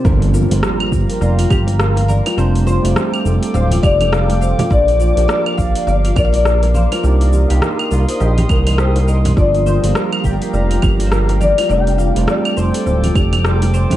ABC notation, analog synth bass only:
X:1
M:4/4
L:1/16
Q:"Swing 16ths" 1/4=103
K:Gm
V:1 name="Analog synth bass" clef=bass
G,,,3 G,,, z2 G,,, z F,,,2 G,,,4- G,,, z | F,,,3 F,,, z2 F,,, z D,,,2 F,,,4- F,,, z | B,,,3 B,,, z2 B,,, z G,,,2 B,,,4- B,,, z | C,,3 C,, z2 C,, z B,,,2 C,,3 C,,3 |
G,,,3 G,,, z2 G,,, z F,,,2 G,,,4- G,,, z | F,,,3 F,,, z2 F,,, z D,,,2 F,,,4- F,,, z |]